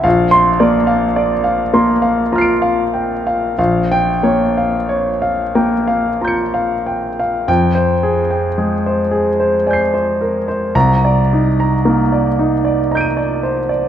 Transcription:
<<
  \new Staff \with { instrumentName = "Grand piano" } { \time 3/4 \key f \dorian \tempo 4 = 54 << { r16 c'''8 r4 r16 <bes'' f''' c'''' d''''>4 | r16 g''8 r4 r16 <bes'' g''' des''''>4 | g''8 r4. <aes'' g''' c''''>4 | bes''8 r4. <bes'' g''' d''''>4 | } \\ { f''8 d''16 f''16 d''16 f''16 c'''16 f''16 f'16 f''16 g''16 f''16 | f''8 des''16 f''16 des''16 f''16 g''16 f''16 f'16 f''16 g''16 f''16 | r16 c''16 aes'16 g''16 aes'16 c''16 aes'16 c''16 d''16 c''16 bes'16 c''16 | r16 d''16 ees'16 bes''16 ees'16 d''16 ees'16 d''16 ees''16 d''16 c''16 d''16 | } >> }
  \new Staff \with { instrumentName = "Grand piano" } { \time 3/4 \key f \dorian bes,,8 bes8 r8 bes8 r4 | bes,,8 bes8 r8 bes8 r4 | f,4 aes8 r4. | c,4 bes8 r4. | }
>>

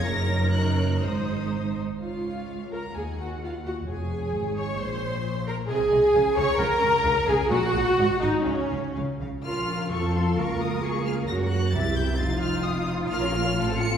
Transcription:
<<
  \new Staff \with { instrumentName = "Violin section" } { \time 2/4 \key des \major \tempo 4 = 130 bes'''4 ges'''4 | ees'''4. r8 | des''2 | ges''2 |
des''2 | des''2 | ees''8 ees''8 f''8 f''8 | ges''8 ges''8 f''8 f''8 |
ges''8 ges''8 ees''8 ees''8 | f''8 f''8 f''8 f''8 | \key bes \minor f'''4 des'''8 c'''8 | des'''8 ees'''8 des'''8 f'''8 |
bes'''8 ges'''8 a'''8 g'''8 | a'''8 f'''8 ees'''8 r8 | f'''4. des''''8 | }
  \new Staff \with { instrumentName = "Violin section" } { \time 2/4 \key des \major << { <ees' des''>4 <ees' des''>4 | <ees' c''>4. r8 | f''4. bes''8 | aes''8 ges''8 f''8 ges''8 |
aes''4. des'''8 | c'''4. bes''8 | aes''4. des'''8 | bes''4. aes''8 |
ges''4. ees''8 | des''4 r4 | \key bes \minor f''2~ | f''2 |
des''4 e''4 | f''2 | f''16 des''16 f''16 des''16 f''16 a''16 f''16 a''16 | } \\ { r2 | r2 | r2 | r2 |
r2 | r2 | r2 | r2 |
r2 | r2 | bes'4 a'4 | bes'2~ |
bes'2 | f'2 | bes'16 f'16 bes'16 f'16 a'16 f'16 a'16 f'16 | } >> }
  \new Staff \with { instrumentName = "Viola section" } { \time 2/4 \key des \major << { bes'2 | c''4. r8 | f'4. bes'8 | aes'8 ges'8 f'8 ges'8 |
aes'4. des''8 | c''4. bes'8 | aes'4. des''8 | bes'4. aes'8 |
ges'4. ees'8 | des'4 r4 | \key bes \minor f'2~ | f'2 |
ges'4 g'4 | ees'2 | f'16 bes'16 f'16 bes'16 f'16 a'16 f'16 a'16 | } \\ { r2 | r2 | r2 | r2 |
r2 | r2 | r2 | r2 |
r2 | r2 | des'4 c'4 | bes2~ |
bes4 c'4~ | c'2 | bes16 des'16 bes16 des'16 a16 c'16 a16 c'16 | } >> }
  \new Staff \with { instrumentName = "Cello section" } { \clef bass \time 2/4 \key des \major ges,2 | aes,4. r8 | des,2 | ees,2 |
f,4 aes,4 | bes,2 | c8 c8 des8 des8 | des8 des8 des8 des8 |
bes,8 bes,8 aes,8 aes,8 | des8 des8 des8 des8 | \key bes \minor f'4 a'4 | bes'4 aes'4 |
ges'4 e'4 | f'2~ | f'4 f'4 | }
  \new Staff \with { instrumentName = "Double bass section" } { \clef bass \time 2/4 \key des \major ges,,2 | aes,,4. r8 | des,2 | ees,2 |
f,,4 aes,,4 | bes,,2 | c,8 c,8 des,8 des,8 | des,8 des,8 des,8 des,8 |
bes,,8 bes,,8 aes,,8 aes,,8 | des,8 des,8 des,8 des,8 | \key bes \minor bes,,4 f,4 | des,2 |
ges,4 c,4 | f,,2 | bes,,4 a,,4 | }
>>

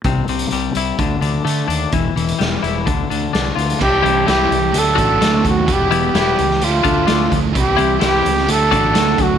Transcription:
<<
  \new Staff \with { instrumentName = "Trumpet" } { \time 4/4 \key c \major \tempo 4 = 128 r1 | r1 | g'4 g'4 a'4. fis'8 | g'4 g'4 f'4. r8 |
g'4 g'4 a'4. fis'8 | }
  \new Staff \with { instrumentName = "Clean electric guitar" } { \time 4/4 \key c \major c8 c8 g8 e'8 d8 d8 a8 d'8 | e8 e8 g8 e'8 d8 d8 d'8 f'8 | r8 <e g c' e'>8 <e g c' e'>8 r4 <d a d' fis'>8 <d a d' fis'>8 r8 | r8 <e g b e'>8 <e g b e'>8 r4 <d a d' f'>8 <d a d' f'>8 r8 |
r8 <e g c' e'>8 <e g c' e'>8 r4 <d a d' fis'>8 <d a d' fis'>8 r8 | }
  \new Staff \with { instrumentName = "Distorted electric guitar" } { \time 4/4 \key c \major r1 | r1 | <e c' e'>8 <e c'>8 <e c' e'>8 <e c'>8 <fis a d'>8 <fis a d'>8 <fis a>8 <fis a>8 | <e b e'>8 <e b>8 <e b e'>8 <e b>8 <f a d'>8 <f a d'>8 <f a>8 <f a>8 |
<e c' e'>8 <e c'>8 <e c' e'>8 <e c'>8 <fis a d'>8 <fis a d'>8 <fis a>8 <fis a>8 | }
  \new Staff \with { instrumentName = "Fingered electric bass" } { \clef bass \time 4/4 \key c \major c,8 c,8 c,8 c,8 d,8 d,8 d8 ees,8 | e,,8 e,,8 e,,8 e,,8 d,8 d,8 c,8 d,8 | c,8 c,8 c,8 c,8 d,8 a,,8 d,8 ees,8 | e,,4 e,,8 des,8 d,8 d,8 d,8 d,8 |
c,8 c,8 c,8 des,8 d,8 a,,8 d,8 d,8 | }
  \new DrumStaff \with { instrumentName = "Drums" } \drummode { \time 4/4 <hh bd>8 hh16 hh16 hh8 hh8 <hh bd>8 hh8 hh8 hh8 | <hh bd>8 hh16 hh16 <hh sn>8 hh8 <hh bd>8 hh8 <hh sn>8 hh16 hh16 | <cymc bd>8 hh8 <hh sn>8 hh8 hh8 <hh bd>8 <hh sn>8 <hh bd>8 | <hh bd>8 hh8 <hh sn>8 hh16 sn16 hh8 <hh bd>8 <hh sn>8 <hh bd>8 |
<hh bd>8 hh8 <hh sn>8 hh16 sn16 hh8 <hh bd>8 <hh sn>8 <hh bd>8 | }
>>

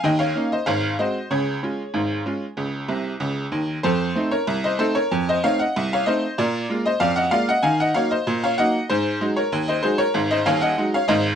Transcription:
<<
  \new Staff \with { instrumentName = "Honky-tonk piano" } { \time 2/4 \key f \phrygian \tempo 4 = 95 <ees'' g''>16 <des'' f''>8 <c'' ees''>16 <des'' f''>8 <c'' ees''>8 | <aes' des''>2~ | <aes' des''>4. r8 | <a' c''>8. <bes' des''>8 <c'' ees''>16 <a' c''>16 <bes' des''>16~ |
<bes' des''>16 <c'' ees''>16 <des'' f''>16 <ees'' ges''>8 <des'' f''>16 <c'' ees''>8 | <bes' d''>8. <c'' ees''>16 <d'' f''>16 <ees'' ges''>16 <d'' f''>16 <ees'' ges''>16 | <f'' aes''>16 <ees'' ges''>16 <des'' f''>16 <c'' ees''>8 <des'' f''>16 <ees'' ges''>8 | <aes' c''>8. <bes' des''>8 <c'' ees''>16 <aes' c''>16 <bes' des''>16~ |
<bes' des''>16 <c'' ees''>16 <des'' f''>16 <ees'' ges''>8 <des'' f''>16 <c'' ees''>8 | }
  \new Staff \with { instrumentName = "Honky-tonk piano" } { \clef bass \time 2/4 \key f \phrygian <ees, ees>8 <bes des' ees'>8 <aes,, aes,>8 <aes c' ges'>8 | <des, des>8 <aes des' f'>8 <aes,, aes,>8 <aes des' f'>8 | <des, des>8 <c, c>8 <des, des>8 <ees, ees>8 | f,8 <a c' ees'>8 c,8 <a c' ees'>8 |
f,8 <a c' ees'>8 c,8 <a c' ees'>8 | bes,8 <aes bes f'>8 f,8 <aes bes f'>8 | ees8 <ges bes ees'>8 bes,8 <ges bes ees'>8 | aes,8 <ges aes ees'>8 ees,8 <ges aes ees'>8 |
<aes,, aes,>8 <ees,, ees,>8 <ges aes ees'>8 <aes,, aes,>8 | }
>>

